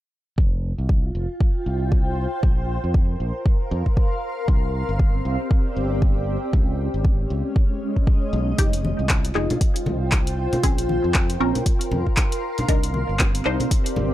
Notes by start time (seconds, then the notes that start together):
0.38 F1 F4, kick
0.78 C2
0.89 kick
1.06 G5
1.15 F1 C5
1.41 kick
1.66 C2
1.92 kick
2.43 A#1 A#4, kick
2.84 F2
2.94 F5, kick
3.20 A#1
3.24 C6
3.46 kick
3.71 F2
3.86 kick
3.97 kick
4.23 C4
4.48 C2, kick
4.89 G1
4.93 G4
4.99 kick
5.25 C2 D5
5.51 kick
5.76 G1
6.02 kick
6.53 C#2 C#4, kick
6.94 G#1 G#3
7.05 kick
7.30 C#2
7.47 D#5
7.56 kick
7.96 kick
8.07 kick
8.33 B1
8.58 F1 G#3 D#4 F4 G4, kick, closed hi-hat
8.73 closed hi-hat
8.85 high conga
8.99 C2
9.09 kick, clap, closed hi-hat
9.17 C5
9.25 G5, closed hi-hat
9.35 F1 G#3 D#4 G#4, clap
9.50 closed hi-hat, low conga
9.61 kick, closed hi-hat
9.76 closed hi-hat
9.86 C2, high conga, low conga
10.12 kick, clap, closed hi-hat
10.27 closed hi-hat
10.53 closed hi-hat, low conga
10.63 A#1 C4 C#4 G#4 A#4, kick, closed hi-hat
10.78 closed hi-hat
10.89 high conga
11.04 F2
11.14 kick, clap, closed hi-hat
11.30 closed hi-hat
11.39 A#1 C4 C#4 A#4 F5
11.45 C6
11.55 closed hi-hat, low conga
11.66 kick, closed hi-hat
11.81 closed hi-hat
11.91 F2, high conga, low conga
12.07 kick
12.17 kick, clap, closed hi-hat
12.32 closed hi-hat
12.43 C4
12.58 closed hi-hat, low conga
12.68 C2 D4 D#4 A#4, kick, closed hi-hat
12.83 closed hi-hat
12.94 G4, high conga
13.09 G1
13.19 kick, clap, closed hi-hat
13.35 D5, closed hi-hat
13.45 C2 D4 D#4 C5, clap
13.60 closed hi-hat, low conga
13.71 kick, closed hi-hat
13.86 closed hi-hat
13.96 G1, high conga, low conga